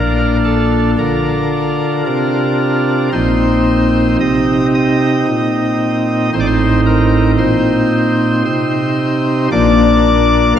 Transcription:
0, 0, Header, 1, 2, 480
1, 0, Start_track
1, 0, Key_signature, -2, "major"
1, 0, Tempo, 1073345
1, 1398, Time_signature, 3, 2, 24, 8
1, 2355, Tempo, 1058201
1, 4771, End_track
2, 0, Start_track
2, 0, Title_t, "Pipe organ"
2, 0, Program_c, 0, 19
2, 0, Note_on_c, 0, 34, 69
2, 0, Note_on_c, 0, 46, 72
2, 0, Note_on_c, 0, 62, 45
2, 0, Note_on_c, 0, 65, 46
2, 0, Note_on_c, 0, 70, 101
2, 163, Note_off_c, 0, 70, 0
2, 198, Note_on_c, 0, 69, 87
2, 404, Note_off_c, 0, 69, 0
2, 427, Note_off_c, 0, 34, 0
2, 428, Note_off_c, 0, 46, 0
2, 440, Note_on_c, 0, 70, 82
2, 441, Note_on_c, 0, 50, 55
2, 905, Note_off_c, 0, 70, 0
2, 906, Note_off_c, 0, 50, 0
2, 921, Note_on_c, 0, 48, 58
2, 921, Note_on_c, 0, 70, 89
2, 1381, Note_off_c, 0, 62, 0
2, 1381, Note_off_c, 0, 65, 0
2, 1384, Note_off_c, 0, 48, 0
2, 1384, Note_off_c, 0, 70, 0
2, 1398, Note_on_c, 0, 72, 92
2, 1399, Note_on_c, 0, 63, 47
2, 1400, Note_on_c, 0, 34, 68
2, 1400, Note_on_c, 0, 46, 72
2, 1400, Note_on_c, 0, 60, 46
2, 1861, Note_off_c, 0, 72, 0
2, 1862, Note_off_c, 0, 34, 0
2, 1862, Note_off_c, 0, 46, 0
2, 1880, Note_on_c, 0, 48, 57
2, 1880, Note_on_c, 0, 75, 91
2, 2083, Note_off_c, 0, 75, 0
2, 2123, Note_on_c, 0, 75, 108
2, 2344, Note_off_c, 0, 48, 0
2, 2361, Note_on_c, 0, 46, 59
2, 2820, Note_off_c, 0, 60, 0
2, 2820, Note_off_c, 0, 63, 0
2, 2822, Note_off_c, 0, 75, 0
2, 2826, Note_off_c, 0, 46, 0
2, 2839, Note_on_c, 0, 33, 68
2, 2839, Note_on_c, 0, 63, 51
2, 2840, Note_on_c, 0, 45, 64
2, 2840, Note_on_c, 0, 60, 50
2, 2840, Note_on_c, 0, 72, 92
2, 2866, Note_off_c, 0, 72, 0
2, 2870, Note_on_c, 0, 74, 82
2, 2896, Note_off_c, 0, 74, 0
2, 2900, Note_on_c, 0, 72, 96
2, 3050, Note_off_c, 0, 72, 0
2, 3078, Note_on_c, 0, 70, 96
2, 3281, Note_off_c, 0, 70, 0
2, 3303, Note_off_c, 0, 33, 0
2, 3303, Note_off_c, 0, 45, 0
2, 3316, Note_on_c, 0, 46, 60
2, 3316, Note_on_c, 0, 72, 85
2, 3786, Note_off_c, 0, 46, 0
2, 3786, Note_off_c, 0, 72, 0
2, 3799, Note_on_c, 0, 48, 66
2, 3800, Note_on_c, 0, 72, 85
2, 4265, Note_off_c, 0, 63, 0
2, 4266, Note_off_c, 0, 60, 0
2, 4268, Note_off_c, 0, 48, 0
2, 4268, Note_off_c, 0, 72, 0
2, 4283, Note_on_c, 0, 34, 78
2, 4284, Note_on_c, 0, 58, 54
2, 4284, Note_on_c, 0, 62, 49
2, 4284, Note_on_c, 0, 74, 112
2, 4285, Note_on_c, 0, 46, 73
2, 4743, Note_off_c, 0, 34, 0
2, 4744, Note_off_c, 0, 46, 0
2, 4744, Note_off_c, 0, 74, 0
2, 4757, Note_on_c, 0, 48, 68
2, 4771, Note_off_c, 0, 48, 0
2, 4771, Note_off_c, 0, 58, 0
2, 4771, Note_off_c, 0, 62, 0
2, 4771, End_track
0, 0, End_of_file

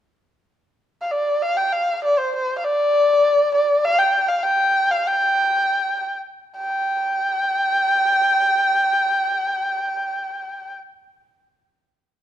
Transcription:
0, 0, Header, 1, 2, 480
1, 0, Start_track
1, 0, Tempo, 607287
1, 140, Time_signature, 2, 2, 24, 8
1, 3499, Tempo, 636943
1, 3979, Tempo, 704225
1, 4459, Tempo, 798935
1, 4939, Tempo, 852273
1, 8126, End_track
2, 0, Start_track
2, 0, Title_t, "Erhu"
2, 0, Program_c, 0, 110
2, 805, Note_on_c, 0, 77, 52
2, 878, Note_on_c, 0, 74, 67
2, 889, Note_off_c, 0, 77, 0
2, 1127, Note_on_c, 0, 77, 82
2, 1138, Note_off_c, 0, 74, 0
2, 1243, Note_on_c, 0, 79, 72
2, 1254, Note_off_c, 0, 77, 0
2, 1364, Note_on_c, 0, 77, 76
2, 1376, Note_off_c, 0, 79, 0
2, 1601, Note_off_c, 0, 77, 0
2, 1615, Note_on_c, 0, 74, 70
2, 1729, Note_on_c, 0, 72, 71
2, 1741, Note_off_c, 0, 74, 0
2, 1842, Note_off_c, 0, 72, 0
2, 1865, Note_on_c, 0, 72, 65
2, 2022, Note_off_c, 0, 72, 0
2, 2038, Note_on_c, 0, 77, 55
2, 2085, Note_on_c, 0, 74, 89
2, 2097, Note_off_c, 0, 77, 0
2, 2792, Note_off_c, 0, 74, 0
2, 2802, Note_on_c, 0, 74, 73
2, 3042, Note_on_c, 0, 77, 96
2, 3054, Note_off_c, 0, 74, 0
2, 3151, Note_on_c, 0, 79, 77
2, 3163, Note_off_c, 0, 77, 0
2, 3383, Note_on_c, 0, 77, 68
2, 3395, Note_off_c, 0, 79, 0
2, 3504, Note_on_c, 0, 79, 77
2, 3516, Note_off_c, 0, 77, 0
2, 3862, Note_on_c, 0, 77, 71
2, 3874, Note_off_c, 0, 79, 0
2, 3985, Note_on_c, 0, 79, 76
2, 3995, Note_off_c, 0, 77, 0
2, 4692, Note_off_c, 0, 79, 0
2, 4947, Note_on_c, 0, 79, 77
2, 7284, Note_off_c, 0, 79, 0
2, 8126, End_track
0, 0, End_of_file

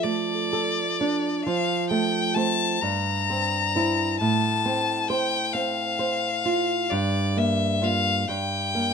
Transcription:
0, 0, Header, 1, 3, 480
1, 0, Start_track
1, 0, Tempo, 949367
1, 740, Time_signature, 6, 3, 24, 8
1, 740, Tempo, 911854
1, 4674, End_track
2, 0, Start_track
2, 0, Title_t, "Violin"
2, 0, Program_c, 0, 40
2, 14, Note_on_c, 0, 74, 49
2, 731, Note_off_c, 0, 74, 0
2, 734, Note_on_c, 0, 77, 57
2, 965, Note_off_c, 0, 77, 0
2, 970, Note_on_c, 0, 79, 56
2, 1200, Note_on_c, 0, 81, 63
2, 1208, Note_off_c, 0, 79, 0
2, 1449, Note_on_c, 0, 82, 57
2, 1457, Note_off_c, 0, 81, 0
2, 2182, Note_off_c, 0, 82, 0
2, 2185, Note_on_c, 0, 81, 59
2, 2648, Note_off_c, 0, 81, 0
2, 2657, Note_on_c, 0, 79, 64
2, 2881, Note_on_c, 0, 77, 53
2, 2888, Note_off_c, 0, 79, 0
2, 3604, Note_on_c, 0, 74, 55
2, 3612, Note_off_c, 0, 77, 0
2, 3852, Note_on_c, 0, 76, 55
2, 3860, Note_off_c, 0, 74, 0
2, 4092, Note_on_c, 0, 77, 62
2, 4100, Note_off_c, 0, 76, 0
2, 4327, Note_on_c, 0, 79, 55
2, 4335, Note_off_c, 0, 77, 0
2, 4674, Note_off_c, 0, 79, 0
2, 4674, End_track
3, 0, Start_track
3, 0, Title_t, "Nylon-string guitar"
3, 0, Program_c, 1, 24
3, 0, Note_on_c, 1, 53, 38
3, 0, Note_on_c, 1, 69, 35
3, 21, Note_on_c, 1, 57, 33
3, 168, Note_off_c, 1, 69, 0
3, 268, Note_on_c, 1, 69, 33
3, 412, Note_off_c, 1, 57, 0
3, 509, Note_on_c, 1, 62, 31
3, 650, Note_off_c, 1, 69, 0
3, 720, Note_off_c, 1, 53, 0
3, 741, Note_off_c, 1, 62, 0
3, 741, Note_on_c, 1, 53, 41
3, 974, Note_on_c, 1, 57, 38
3, 1205, Note_off_c, 1, 57, 0
3, 1211, Note_on_c, 1, 57, 32
3, 1214, Note_on_c, 1, 60, 38
3, 1433, Note_off_c, 1, 53, 0
3, 1435, Note_off_c, 1, 57, 0
3, 1436, Note_off_c, 1, 60, 0
3, 1456, Note_on_c, 1, 43, 41
3, 1707, Note_on_c, 1, 60, 32
3, 1941, Note_off_c, 1, 60, 0
3, 1947, Note_on_c, 1, 60, 31
3, 1951, Note_on_c, 1, 64, 38
3, 2166, Note_off_c, 1, 43, 0
3, 2166, Note_off_c, 1, 60, 0
3, 2167, Note_off_c, 1, 64, 0
3, 2185, Note_on_c, 1, 45, 42
3, 2421, Note_on_c, 1, 60, 36
3, 2654, Note_on_c, 1, 72, 40
3, 2795, Note_off_c, 1, 60, 0
3, 2888, Note_on_c, 1, 60, 36
3, 3029, Note_off_c, 1, 72, 0
3, 3124, Note_on_c, 1, 72, 35
3, 3269, Note_off_c, 1, 60, 0
3, 3368, Note_on_c, 1, 65, 34
3, 3512, Note_off_c, 1, 72, 0
3, 3588, Note_off_c, 1, 45, 0
3, 3609, Note_on_c, 1, 43, 45
3, 3610, Note_off_c, 1, 65, 0
3, 3849, Note_on_c, 1, 58, 36
3, 4078, Note_off_c, 1, 58, 0
3, 4084, Note_on_c, 1, 58, 37
3, 4086, Note_on_c, 1, 65, 38
3, 4307, Note_off_c, 1, 58, 0
3, 4308, Note_off_c, 1, 65, 0
3, 4310, Note_off_c, 1, 43, 0
3, 4333, Note_on_c, 1, 43, 46
3, 4575, Note_on_c, 1, 58, 32
3, 4674, Note_off_c, 1, 43, 0
3, 4674, Note_off_c, 1, 58, 0
3, 4674, End_track
0, 0, End_of_file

